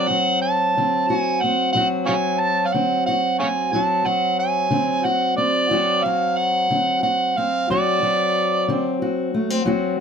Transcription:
Already playing: D2 F#3 C4 F#4
0.08 F#3 F#5
0.42 A5
0.77 D3 C4
1.08 F#4 G#5
1.42 C4 F#5
1.73 D2 F#3 C4 F#5
1.77 F#4
2.06 F#3 C#5 F5 G#5
2.40 A5
2.66 F5
2.73 D3 C4 F#5
3.07 F#4 F#5
3.39 C4 C#5 F5 G#5
3.73 D2 F#3 C4 F#4 A5
4.06 F#3 F#5
4.40 G#5
4.71 D3 C4
5.05 F#4 F#5
5.37 C4 D5
5.71 D2 F#3 C4 F#4
6.04 F#3 F5
6.38 F#5
6.71 D3 C4
7.03 F#4 F#5
7.38 C4 F5
7.70 D2 F#3 C4 F#4 D5
8.03 F#3
8.68 D3 C4
9.02 F#4
9.34 A3
9.50 C4
9.65 D2 F#3 C4 F#4

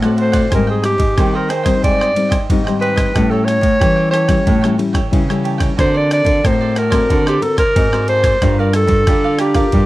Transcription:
Already playing: A2
0.02 A3 C4 F#4 C5 D5 F#5, cross-stick
0.16 D4 C5 D5 F#5, ride
0.21 C5
0.32 C5 D5 F#5, kick, cross-stick, ride
0.50 G#2 G3 C4 G#4 C5 D#5 G5, kick, cross-stick, ride
0.54 D#4 A#4
0.67 G#4 C5 D#5 G5
0.82 G4, muted cavaquinho stroke, cross-stick, ride
0.98 G#2, kick, ride
1.16 D#3 G3 C4 D#4 G#4 C5 D#5 G5, kick, cross-stick, ride
1.33 A#4 C5 D#5 G5
1.49 G#4 C5 D#5 G5, cross-stick, ride
1.63 G3 C4 D#4 C5 D#5 G5, kick, cross-stick, ride
1.82 G#2 G#4 C5 D5 D#5 G5, kick, ride
1.98 C5 D#5 G5, cross-stick
2.15 G3 C4 D#4, muted cavaquinho stroke, ride
2.29 C5 D#5 G5, kick, cross-stick, ride
2.50 G#2 D#3 G3 C4 D#4, kick, ride
2.64 G3 C4 C5 D#5 G5, cross-stick
2.68 D#4
2.79 G#4 B4 C5 D#5 G5, ride
2.96 C5 D#5 G5, kick, cross-stick, ride
3.14 A2 G3 C#4 E4 G4 A4 C#5 G5, kick, cross-stick, ride
3.30 A4 C#5 G5
3.45 C#5, muted cavaquinho stroke, cross-stick, ride
3.61 A2, kick, ride
3.79 E3 G3 C#4 E4 G4 A4 C#5 G5, kick, cross-stick, ride
3.96 A4 C#5 G5
4.11 G4 A4 C#5 G5, cross-stick, ride
4.28 G3 C#4 E4 A4 C#5 G5, kick, cross-stick, ride
4.46 A2 G4 A4 C#5 G5, kick, ride
4.61 G3 C#4 E4 A4 C#5 G5, cross-stick
4.78 G3 C#4 E4, muted cavaquinho stroke, ride
4.93 A4 C#5 G5, kick, cross-stick, ride
5.11 C#3 E3 G3 C#4 E4, kick, ride
5.29 G3 C#4 E4 A4 C#5 G5, cross-stick
5.43 G4 A4 C#5 G5, ride
5.58 A4 C#5 G5, kick, cross-stick, ride
5.76 D3 C4 F#4 A4 A#4 C5 D5, kick, cross-stick, ride
5.94 A4 C5 D5
6.10 D5, muted cavaquinho stroke, cross-stick, ride
6.25 D3, kick, ride
6.43 A2 C4 F#4 A4 A#4 C5 D5, kick, cross-stick, ride
6.61 A4 C5 D5
6.75 F#4 A4 A#4 C5 D5, cross-stick, ride
6.90 C4 F#4 A4 A#4 C5 D5, kick, cross-stick, ride
7.09 D3 F#4 A4 C5 D5, kick, ride
7.26 G4 A4 C5 D5, cross-stick
7.41 C4 F#4 A4 A#4, muted cavaquinho stroke, ride
7.57 A#4 C5 D5, kick, cross-stick, ride
7.75 G#2 C4 F#4 A#4, kick, ride
7.92 C4 F#4 A4 A#4 C5 D5, cross-stick
8.08 F#4 A4 C5 D5, ride
8.23 A4 C5 D5, kick, cross-stick, ride
8.41 G2 G3 D4 F4 G4 A#4 D5 F5, kick, cross-stick, ride
8.59 A#4 D5 F5
8.73 A4, muted cavaquinho stroke, cross-stick, ride
8.87 G2, kick, ride
9.07 D3 D4 F4 G4 A#4 D5 F5, kick, cross-stick, ride
9.24 A#4 D5 F5
9.39 G4 A#4 D5 F5, cross-stick, ride
9.54 D4 F4 A#4 D5 F5, kick, cross-stick, ride
9.72 G2 G3 G4 A#4 D5 F5, kick, ride

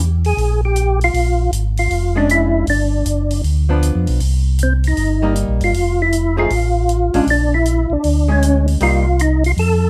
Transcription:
Already playing: E2
0.24 G#4, open hi-hat
0.37 A#1, open hi-hat
0.65 G4
0.76 closed hi-hat
1.01 F4, open hi-hat
1.14 A#1, open hi-hat
1.52 G#1, closed hi-hat
1.77 F4, open hi-hat
1.91 F1, open hi-hat
2.16 G#3 C#4 D4
2.29 E4, closed hi-hat
2.67 G1 D4, open hi-hat
3.06 F#1, closed hi-hat
3.30 open hi-hat
3.44 D2, open hi-hat
3.69 F3 B3 D4
3.83 closed hi-hat
3.95 F2
4.07 B1, open hi-hat
4.20 C2, open hi-hat
4.59 closed hi-hat
4.63 C4
4.84 D#4, open hi-hat
4.97 G1, open hi-hat
5.22 G3 A#3 D#4
5.35 closed hi-hat
5.48 A#1
5.60 G1 F4, open hi-hat
5.73 F1, open hi-hat
6.02 E4
6.12 closed hi-hat
6.37 F3 A3 D#4 F4 G#4
6.50 A1, open hi-hat
6.89 closed hi-hat
7.14 A1 G#3 C#4 D4, open hi-hat
7.27 A#1 D4, open hi-hat
7.54 E4
7.65 closed hi-hat
7.90 A#1 D4
8.04 D2, open hi-hat
8.28 G#3 C#4
8.42 closed hi-hat
8.68 open hi-hat
8.80 C2 G3 A#3 D#4 F4, open hi-hat
9.19 D#4, closed hi-hat
9.44 F4, open hi-hat
9.57 F2 A4, open hi-hat

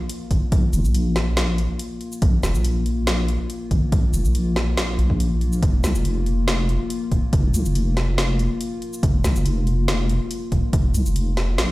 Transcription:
Already playing: A#3 F4
0.09 closed hi-hat
0.31 G#1, kick, closed hi-hat
0.52 A#1, kick, closed hi-hat
0.73 F1, closed hi-hat, shaker
0.84 A#1, shaker
0.95 closed hi-hat
1.16 snare, closed hi-hat
1.37 snare, closed hi-hat
1.58 closed hi-hat
1.79 closed hi-hat
2.01 closed hi-hat
2.12 shaker
2.22 A#1, kick, closed hi-hat
2.43 F1, snare, closed hi-hat, shaker
2.55 A#1, shaker
2.65 closed hi-hat
2.86 closed hi-hat
3.07 snare, closed hi-hat
3.28 closed hi-hat
3.50 closed hi-hat
3.71 G#1, kick, closed hi-hat
3.92 A#1, kick, closed hi-hat
4.14 F1, closed hi-hat, shaker
4.25 A#1, shaker
4.35 closed hi-hat
4.56 snare, closed hi-hat
4.77 snare, closed hi-hat
4.99 A#1, closed hi-hat
5.10 kick
5.20 closed hi-hat
5.41 closed hi-hat
5.53 shaker
5.63 F1, kick, closed hi-hat
5.84 C2, snare, closed hi-hat, shaker
5.95 F1, shaker
6.05 closed hi-hat
6.26 closed hi-hat
6.48 snare, closed hi-hat
6.69 closed hi-hat
6.90 closed hi-hat
7.12 D#1, kick, closed hi-hat
7.33 F1, kick, closed hi-hat
7.54 C2, closed hi-hat, shaker
7.65 F1, shaker
7.75 closed hi-hat
7.97 snare, closed hi-hat
8.18 snare, closed hi-hat
8.39 closed hi-hat
8.61 closed hi-hat
8.82 closed hi-hat
8.93 shaker
9.03 F1, kick, closed hi-hat
9.24 C2, snare, closed hi-hat, shaker
9.36 F1, shaker
9.46 closed hi-hat
9.67 closed hi-hat
9.88 snare, closed hi-hat
10.09 closed hi-hat
10.31 closed hi-hat
10.52 D#1, kick, closed hi-hat
10.73 F1, kick, closed hi-hat
10.94 C2, closed hi-hat, shaker
11.06 F1, shaker
11.16 closed hi-hat
11.37 snare, closed hi-hat
11.58 A#1, snare, closed hi-hat

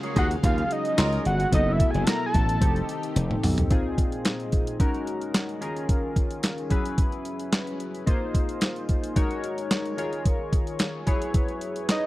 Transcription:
Already playing: C#3 F#3 G#3 C#4 F4 F#4 G#4 F5
0.03 A#3 G#4 C#5, closed hi-hat
0.16 D#2 A#3 G#4 D#5 F#5, kick, closed hi-hat
0.31 closed hi-hat
0.43 D#2 F5, kick, closed hi-hat
0.58 closed hi-hat
0.71 D#5, closed hi-hat
0.85 closed hi-hat
0.98 C#2 F#3 F4 A#4, snare, clap, closed hi-hat
1.13 closed hi-hat
1.25 G1 F#5, closed hi-hat
1.40 closed hi-hat
1.52 F#1 B2 F#3 A3 B3 E4 F#4 A4 D#5, kick, closed hi-hat
1.72 E5
1.80 kick, closed hi-hat
1.90 F#1 G#5, closed hi-hat
2.04 A5, snare, clap, closed hi-hat
2.09 A#5
2.26 A5
2.34 A1, kick, closed hi-hat
2.49 closed hi-hat
2.61 F1 D#3 C4 D#4 G4 A4, kick, closed hi-hat
2.76 closed hi-hat
2.89 closed hi-hat
3.03 closed hi-hat
3.16 F1, closed hi-hat, high tom
3.31 mid tom
3.43 B1, mid tom, open hi-hat
3.58 closed hi-hat, floor tom
3.70 A#2 C4 D#4 F4 G#4, kick, closed hi-hat
3.98 kick, closed hi-hat
4.12 closed hi-hat
4.25 snare, clap, closed hi-hat
4.40 closed hi-hat
4.52 kick, closed hi-hat
4.67 closed hi-hat
4.80 G#3 C#4 D#4 F#4 A#4, kick, closed hi-hat
4.94 closed hi-hat
5.07 closed hi-hat
5.22 closed hi-hat
5.34 snare, clap, closed hi-hat
5.49 closed hi-hat
5.61 D#3 C#4 F4 G#4 A#4, closed hi-hat
5.76 closed hi-hat
5.89 kick, closed hi-hat
6.16 kick, closed hi-hat
6.31 closed hi-hat
6.43 snare, clap, closed hi-hat
6.58 closed hi-hat
6.70 F#3 C#4 E4 G#4 B4, kick, closed hi-hat
6.86 closed hi-hat
6.98 kick, closed hi-hat
7.12 closed hi-hat
7.25 closed hi-hat
7.39 closed hi-hat
7.52 snare, clap, closed hi-hat
7.67 closed hi-hat
7.80 closed hi-hat
7.95 closed hi-hat
8.06 A#3 D#4 F4 G#4 C5, kick, closed hi-hat
8.34 kick, closed hi-hat
8.49 closed hi-hat
8.61 snare, clap, closed hi-hat
8.76 closed hi-hat
8.89 kick, closed hi-hat
9.04 closed hi-hat
9.16 G#3 D#4 F#4 A#4 C#5, kick, closed hi-hat
9.31 closed hi-hat
9.44 closed hi-hat
9.58 closed hi-hat
9.71 snare, clap, closed hi-hat
9.85 closed hi-hat
9.97 D#3 F4 G#4 A#4 C#5, closed hi-hat
10.13 closed hi-hat
10.25 kick, closed hi-hat
10.53 kick, closed hi-hat
10.67 closed hi-hat
10.79 snare, clap, closed hi-hat
11.06 F#3 E4 G#4 B4 C#5, kick, closed hi-hat
11.22 closed hi-hat
11.34 kick, closed hi-hat
11.48 closed hi-hat
11.61 closed hi-hat
11.76 closed hi-hat
11.89 D#5, snare, clap, closed hi-hat

